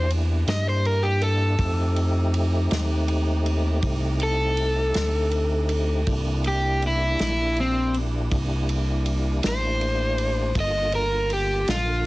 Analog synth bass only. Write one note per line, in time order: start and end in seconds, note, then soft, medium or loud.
0.00 0.44 E2 medium
0.47 1.56 G2 medium
1.59 2.68 F2 medium
2.71 3.80 D#2 medium
3.83 4.92 C2 medium
4.96 6.04 D2 medium
6.07 7.16 C2 medium
7.20 8.28 A#1 medium
8.32 9.40 C2 medium
9.44 10.53 A1 loud
10.55 11.64 G1 medium
11.68 12.06 A#1 medium